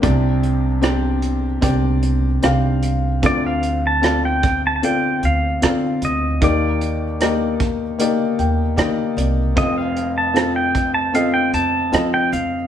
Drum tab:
HH |xxxxxxxx|xxxxxxxx|xxxxxxxx|xxxxxxxx|
SD |--r---r-|--r---r-|--r---r-|--r---r-|
BD |o---o---|o--o----|o--o----|o--o----|